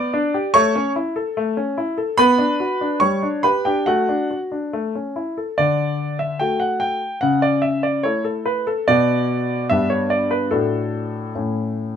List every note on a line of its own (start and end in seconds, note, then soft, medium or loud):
0.00 0.14 B3 medium
0.00 0.50 D5 medium
0.00 0.20 D6 loud
0.14 0.35 D4 medium
0.34 0.54 G4 medium
0.54 0.74 A3 medium
0.54 0.92 C#5 medium
0.54 0.90 C#6 loud
0.76 0.96 C#4 medium
0.96 1.17 E4 medium
1.16 1.37 A4 medium
1.37 1.56 A3 medium
1.57 1.78 C#4 medium
1.78 1.99 E4 medium
1.98 2.18 A4 medium
2.18 2.38 B3 medium
2.18 2.97 B4 medium
2.18 3.01 B5 loud
2.38 2.60 D4 medium
2.60 2.81 F#4 medium
2.81 3.02 D4 medium
3.00 3.21 G3 medium
3.00 3.41 C#5 medium
3.00 3.26 C#6 medium
3.23 3.45 D4 soft
3.43 3.65 G4 medium
3.43 3.64 B4 medium
3.43 3.65 B5 medium
3.65 3.87 D4 soft
3.65 3.86 G4 medium
3.65 3.87 G5 medium
3.86 4.08 A3 medium
3.86 4.29 F#4 medium
3.86 4.38 F#5 medium
4.09 4.31 D4 soft
4.31 4.53 F#4 soft
4.52 4.73 D4 soft
4.73 4.94 A3 medium
4.95 5.17 C#4 soft
5.16 5.38 E4 soft
5.37 5.58 A4 soft
5.58 6.38 D3 medium
5.58 6.16 D5 medium
6.19 6.40 E5 medium
6.39 7.00 A3 soft
6.39 7.00 F#4 soft
6.39 7.00 A4 soft
6.39 6.60 G5 medium
6.60 6.81 F#5 medium
6.80 7.18 G5 medium
7.21 8.02 C#3 medium
7.21 7.42 F#5 medium
7.42 7.63 D5 medium
7.62 7.83 E5 medium
7.83 8.04 D5 medium
8.03 8.65 A3 soft
8.03 8.65 E4 soft
8.03 8.23 A4 soft
8.03 8.25 C#5 medium
8.24 8.46 A4 medium
8.46 8.67 B4 medium
8.67 8.88 A4 medium
8.88 9.68 B2 medium
8.88 9.66 B3 soft
8.88 9.66 F#4 soft
8.88 9.66 D5 medium
9.70 10.50 G2 medium
9.70 10.48 B3 soft
9.70 10.48 D4 soft
9.70 10.49 G4 soft
9.70 9.90 E5 medium
9.90 10.10 C#5 medium
10.10 10.31 D5 medium
10.31 10.51 B4 medium
10.51 11.32 A2 soft
10.51 11.31 A3 soft
10.51 11.31 D4 soft
10.51 11.31 F#4 soft
10.51 11.34 A4 medium
11.35 11.96 A2 soft
11.35 11.96 A3 soft
11.35 11.96 C#4 soft
11.35 11.96 E4 soft